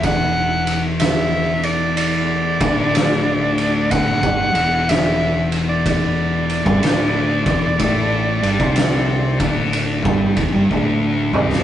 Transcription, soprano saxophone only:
X:1
M:4/4
L:1/16
Q:"Swing" 1/4=62
K:Dmix
V:1 name="Soprano saxophone"
f3 z e2 d2 d8 | f4 e2 z d d8- | d12 z4 |]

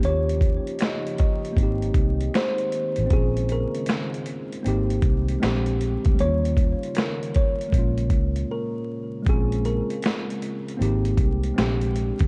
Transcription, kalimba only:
X:1
M:4/4
L:1/16
Q:"Swing 16ths" 1/4=78
K:Bbdor
V:1 name="Kalimba"
d4 e2 e6 c2 z2 | A2 B3 z8 z3 | d4 B2 d6 B2 z2 | A2 B3 z8 z3 |]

